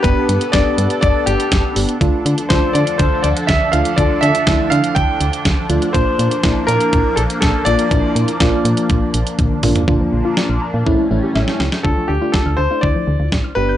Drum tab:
HH |x-xxx-xxx-xxx-ox|x-xxx-xxx-xxx-xx|x-xxx-xxx-xxx-xx|x-xxx-xxx-xxx-xx|
SD |----o-------o---|----o-------o---|----o-------o---|----o-------o---|
T1 |----------------|----------------|----------------|----------------|
T2 |----------------|----------------|----------------|----------------|
FT |----------------|----------------|----------------|----------------|
BD |o---o---o---o---|o---o---o---o---|o---o---o---o---|o---o---o---o---|

HH |x-xxx-xxx-xxx-ox|----------------|----------------|
SD |----o-----------|----o-------oooo|----o-------o---|
T1 |------------o---|----------------|----------------|
T2 |--------------o-|----------------|----------------|
FT |---------------o|----------------|----------------|
BD |o---o---o---o---|o-------o-------|o---o---o---o---|